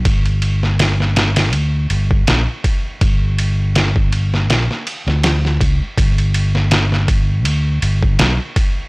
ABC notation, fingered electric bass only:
X:1
M:4/4
L:1/16
Q:"Swing 16ths" 1/4=81
K:Glyd
V:1 name="Fingered electric bass" clef=bass
G,,,8 D,,2 G,,,2 _B,,, z3 | G,,,8 _B,,, z2 D,,3 C,, z | G,,,8 D,,2 G,,,2 B,,, z3 |]